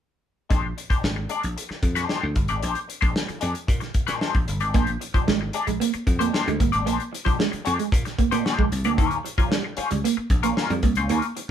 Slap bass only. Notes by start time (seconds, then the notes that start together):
0.51 A#1
0.90 muted slap bass stroke
1.03 G#1
1.44 A#1
1.70 muted slap bass stroke
1.83 F2
2.23 D2
2.36 G1
2.50 G#1
2.63 A#1
3.02 A#1
3.29 muted slap bass stroke
3.42 F2
3.68 A#2
3.95 muted slap bass stroke
4.09 A#2
4.35 A#1
4.48 G1
4.61 G#1
4.75 A#1
5.14 muted slap bass stroke
5.28 G#1
5.67 A#1
5.95 muted slap bass stroke
6.07 F2
6.47 D2
6.60 G1
6.74 G#1
6.87 A#1
7.27 A#1
7.53 muted slap bass stroke
7.67 F2
7.92 A#2
8.19 muted slap bass stroke
8.32 A#2
8.59 A#1
8.72 C2
8.86 D2
8.98 D#2
9.38 muted slap bass stroke
9.78 muted slap bass stroke
9.91 C#2
10.18 muted slap bass stroke
10.30 A#1
10.70 F2
10.83 C2
10.97 C#2
11.10 D#2